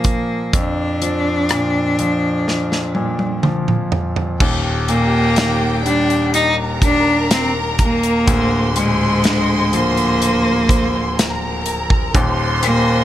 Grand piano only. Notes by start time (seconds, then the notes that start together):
Already playing: A#2 F3
0.54 F2
1.02 F3
1.51 A#2
1.99 F3
2.96 A#2
3.43 F3
4.41 D#1 D#2
4.89 A#2
5.38 D#3
5.86 G3
8.27 D1 D2
8.76 A#2
9.25 D3
9.74 F3
12.14 D#1 D#2
12.63 A#2